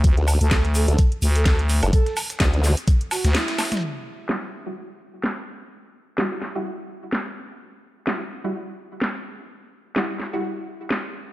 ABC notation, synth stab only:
X:1
M:4/4
L:1/16
Q:"Swing 16ths" 1/4=127
K:Em
V:1 name="Synth stab"
z16 | z16 | z4 [G,EF] z2 [G,EF] z8 | z4 [G,EF]3 [G,EF]8- [G,EF]- |
[G,EF]4 [G,EF] z2 [G,EF] z8 | z4 [G,EF]3 [G,EF]8- [G,EF] |]